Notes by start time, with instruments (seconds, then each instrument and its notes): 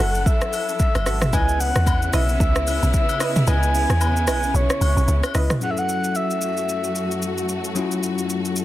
Already playing: string section F#3 C#4 E4 A4, soft synth lead F#5
0.00 log drum bass F#1, high agogo
0.15 shaker
0.21 soft synth lead F#5
0.26 soft synth lead E5, kick, shaker
0.41 cross-stick, shaker
0.53 open hi-hat, high agogo, shaker
0.69 shaker
0.79 soft synth lead E5, kick, shaker
0.95 log drum bass F#1, cross-stick, high agogo, shaker
1.06 log drum bass G#1, synth stab F#4 A4 E5, cross-stick, open hi-hat, shaker
1.22 cross-stick, mid tom, shaker
1.33 log drum bass C#2, string section C#3 B3 C#4 E4, synth stab E4 B4 D#5, soft synth lead G#5, kick, high agogo, shaker
1.49 shaker
1.60 soft synth lead F#5, open hi-hat, shaker
1.75 log drum bass E2, cross-stick, shaker
1.87 kick, high agogo, low woodblock, shaker
2.02 shaker
2.13 log drum bass B1, synth stab E4 B4 D#5, soft synth lead E5, cross-stick, open hi-hat, high agogo, shaker
2.29 shaker
2.40 log drum bass C#2, kick, shaker
2.55 cross-stick, shaker
2.67 open hi-hat, high agogo, shaker
2.83 log drum bass B1, shaker
2.94 soft synth lead E5, kick, shaker
3.09 high agogo, shaker
3.20 synth stab E4 B4 D#5, cross-stick, open hi-hat, shaker
3.36 mid tom, shaker
3.47 log drum bass C#2, string section C#4, synth stab E4 B4 D#5, soft synth lead G#5, high agogo, shaker
3.63 shaker
3.75 open hi-hat, shaker
3.89 log drum bass E2, cross-stick, shaker
4.01 high agogo, low woodblock, shaker
4.16 shaker
4.27 log drum bass B1, synth stab E4 B4 D#5, cross-stick, open hi-hat, high agogo, shaker
4.43 shaker
4.54 log drum bass B1, soft synth lead C#5, shaker
4.70 cross-stick, shaker
4.81 log drum bass C#2, open hi-hat, high agogo, shaker
4.97 log drum bass B1, shaker
5.08 log drum bass C#2, shaker
5.23 cross-stick, high agogo, shaker
5.34 log drum bass C#2, synth stab E4 B4 D#5, cross-stick, open hi-hat, shaker
5.50 cross-stick, mid tom, shaker
5.60 string section F#2 F#3 A3 F#4, tine electric piano F#3 C#4 E4, soft synth lead F#5, shaker
5.64 tine electric piano G#4
5.70 tine electric piano A4, soft synth lead E5
5.77 soft synth lead F#5, shaker
5.89 shaker
6.04 shaker
6.15 soft synth lead E5, shaker
6.30 shaker
6.41 shaker
6.57 shaker
6.69 shaker
6.84 shaker
6.95 shaker
7.11 shaker
7.22 shaker
7.38 shaker
7.49 shaker
7.64 shaker
7.75 tine electric piano F#3 C#4 E4, shaker
7.79 tine electric piano F4
7.85 tine electric piano F#4
7.91 shaker
8.03 shaker
8.18 shaker
8.30 shaker
8.45 shaker
8.56 shaker